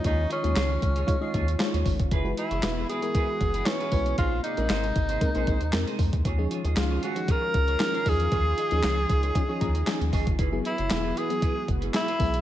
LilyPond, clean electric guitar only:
\new Staff \with { instrumentName = "Clean electric guitar" } { \time 4/4 \key ges \lydian \tempo 4 = 116 <f' aes' des''>16 r16 <f' aes' ees''>16 <f' aes' ees''>16 <f' aes' des''>16 r8 <f' aes' des''>16 r16 <f' aes' des''>16 <f' aes' des''>16 r8 <f' aes' des''>16 r8 | <fes' aes' ces''>16 r16 <fes' aes' ces''>16 <fes' aes' des''>16 r16 <fes' aes' ces''>16 <fes' aes' ces''>16 r16 <fes' aes' ces''>16 r8 <fes' aes' ces''>16 r16 <fes' aes' ces''>16 r8 | <ees' aes' c''>16 r16 <ees' aes' d''>16 <ees' aes' d''>16 <ees' aes' c''>16 r8 <ees' aes' c''>16 r16 <ees' aes' c''>16 <ees' aes' c''>16 r8 <ees' aes' c''>16 r8 | <f' aes' des''>16 r16 <f' aes' des''>16 <f' aes' ees''>16 r16 <f' aes' des''>16 <f' aes' des''>16 r16 <f' aes' des''>16 r8 <f' aes' des''>16 r16 <f' aes' des''>16 r8 |
<f' aes' des''>16 r16 <f' aes' ees''>16 <f' aes' ees''>16 <f' aes' des''>16 r8 <f' aes' des''>16 r16 <f' aes' des''>16 <f' aes' des''>16 r8. <f' aes' des''>16 r16 | <fes' aes' ces''>16 r16 <fes' aes' ces''>16 <fes' aes' des''>16 r16 <fes' aes' ces''>16 <fes' aes' ces''>16 r16 <fes' aes' ces''>16 r8 <fes' aes' ces''>16 r16 <fes' aes' ces''>16 r8 | }